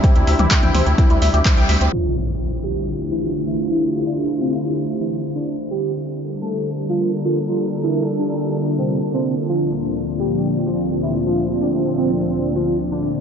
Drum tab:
HH |xxoxxxoxxxoxxxox|--x-x-x-xxxxx-xx|x-x-x-xxxxxxxxxx|xxxxxxxxxxxxxxxx|
CP |----x-------x---|----------------|----------------|----------------|
T2 |---o-oo---------|----------------|----------------|----------------|
BD |o---o---o---o---|----------------|----------------|----------------|

HH |xxxxxxxxxxxxxxxx|xxxxxxxxxxxxxxxx|xxxxxxxxxxxxxxxx|
CP |----------------|----------------|----------------|
T2 |----------------|----------------|----------------|
BD |----------------|----------------|----------------|